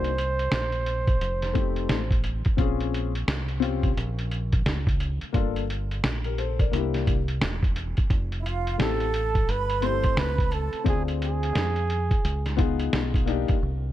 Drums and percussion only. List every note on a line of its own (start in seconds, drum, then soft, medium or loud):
0.04 closed hi-hat medium
0.18 closed hi-hat medium
0.39 closed hi-hat medium
0.52 snare loud
0.52 closed hi-hat medium
0.72 closed hi-hat soft
0.86 closed hi-hat medium
1.07 kick medium
1.07 closed hi-hat soft
1.21 closed hi-hat medium
1.42 snare soft
1.42 closed hi-hat medium
1.55 kick medium
1.55 closed hi-hat medium
1.76 closed hi-hat medium
1.89 snare loud
1.89 closed hi-hat medium
2.11 kick loud
2.11 closed hi-hat medium
2.24 closed hi-hat medium
2.45 kick medium
2.45 closed hi-hat soft
2.58 kick loud
2.58 closed hi-hat medium
2.80 closed hi-hat soft
2.94 closed hi-hat medium
3.15 closed hi-hat medium
3.28 snare loud
3.28 closed hi-hat medium
3.48 closed hi-hat medium
3.62 closed hi-hat medium
3.83 kick medium
3.83 closed hi-hat soft
3.97 closed hi-hat loud
4.19 closed hi-hat medium
4.31 closed hi-hat medium
4.52 kick medium
4.52 closed hi-hat medium
4.66 snare loud
4.66 closed hi-hat medium
4.87 kick loud
4.87 closed hi-hat medium
5.00 closed hi-hat medium
5.21 closed hi-hat soft
5.34 kick loud
5.34 closed hi-hat medium
5.56 closed hi-hat medium
5.70 closed hi-hat medium
5.91 closed hi-hat medium
6.04 snare loud
6.04 closed hi-hat medium
6.24 closed hi-hat soft
6.38 closed hi-hat medium
6.59 kick medium
6.59 closed hi-hat soft
6.73 closed hi-hat loud
6.94 snare soft
6.94 closed hi-hat medium
7.07 kick medium
7.07 closed hi-hat medium
7.28 closed hi-hat medium
7.41 snare loud
7.41 closed hi-hat medium
7.63 kick medium
7.63 closed hi-hat soft
7.76 closed hi-hat medium
7.97 kick medium
7.97 closed hi-hat soft
8.10 kick loud
8.10 closed hi-hat medium
8.32 closed hi-hat medium
8.46 closed hi-hat medium
8.67 closed hi-hat medium
8.80 snare loud
8.80 closed hi-hat medium
9.00 closed hi-hat medium
9.14 closed hi-hat medium
9.35 kick medium
9.35 closed hi-hat medium
9.49 closed hi-hat medium
9.70 closed hi-hat medium
9.82 closed hi-hat medium
10.04 kick medium
10.04 closed hi-hat medium
10.17 snare loud
10.17 closed hi-hat medium
10.38 kick loud
10.38 closed hi-hat medium
10.52 closed hi-hat medium
10.73 closed hi-hat soft
10.86 kick loud
10.86 closed hi-hat medium
11.08 closed hi-hat medium
11.22 closed hi-hat medium
11.43 closed hi-hat medium
11.55 snare loud
11.55 closed hi-hat medium
11.76 closed hi-hat soft
11.90 closed hi-hat medium
12.11 kick medium
12.11 closed hi-hat soft
12.25 closed hi-hat medium
12.46 snare soft
12.46 closed hi-hat medium
12.59 kick medium
12.59 closed hi-hat medium
12.79 closed hi-hat medium
12.93 snare loud
12.93 closed hi-hat medium
13.14 kick loud
13.14 closed hi-hat medium
13.27 closed hi-hat medium
13.48 kick medium
13.48 closed hi-hat soft